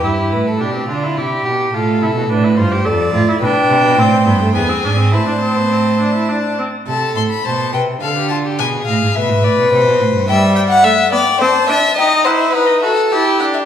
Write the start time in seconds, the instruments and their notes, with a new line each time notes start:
0.03 cello G2, viola E4, violin G4
0.32 cello A2, violin B4
0.47 violin A4
0.60 cello B2, viola D4, violin G4
0.75 viola C4
0.88 cello D3, viola D4, violin F4
1.03 viola E4
1.17 cello C3, violin E4, viola G4
1.45 cello B2, violin G4
1.74 cello A2, viola F4, violin A4
2.02 cello C3, viola E4
2.16 cello B2
2.30 cello A2, viola D4, violin B4
2.44 viola E4
2.57 cello G2, viola F4, violin C5
2.72 viola G4
2.85 cello F2, viola A4, violin D5
3.14 cello A2, viola F4
3.28 viola E4
3.41 cello B2, viola D4, violin B4 G5
3.70 cello C3
3.83 cello B2
3.97 cello A2, viola C4, violin C5
4.26 cello G2, viola B3
4.42 viola A3
4.55 cello E2, viola B3, violin G#4 G#5
4.69 viola C4
4.84 cello G#2, viola D4
4.98 viola C4
5.12 cello A2, viola E4, violin C5 A5
5.27 viola D4
5.42 viola C4
5.57 viola B3
5.71 viola C4
6.00 viola D4
6.15 viola E4
6.29 viola D4
6.59 viola C4
6.87 cello C3, violin A4 A5
7.16 cello A2, violin C6
7.31 violin B5
7.45 cello B2, violin C5 A5
7.73 cello C3, violin B4 G5
8.02 cello D3, violin A4 F5
8.17 violin G4
8.29 violin F4 A5
8.45 violin G4
8.59 cello B2, violin G#4 G#5
8.86 cello A2, violin F5
9.02 cello G#2
9.15 cello B2, violin B4 E5
9.30 cello G#2
9.44 cello A2, violin D5
9.57 cello B2
9.72 cello C3, violin C5
9.86 cello B2
10.00 cello A2
10.14 cello G2
10.29 viola G3, violin E5 G5
10.56 violin E5 G5
10.69 violin F#5
10.84 viola A3, violin E5 F#5
11.12 viola B3, violin D5 G5
11.41 viola C4, violin C5 A5
11.69 viola D4, violin E5
11.97 viola D#4, violin D#5 G5
12.25 viola E4, violin C5 F#5
12.39 violin E5
12.52 viola D#4, violin B4 F#5
12.66 violin D#5
12.80 viola F#4, violin A4 E5
12.96 violin F#5
13.10 viola E4, violin G4 A5
13.25 violin G5
13.39 viola D4, violin F#5
13.54 violin E5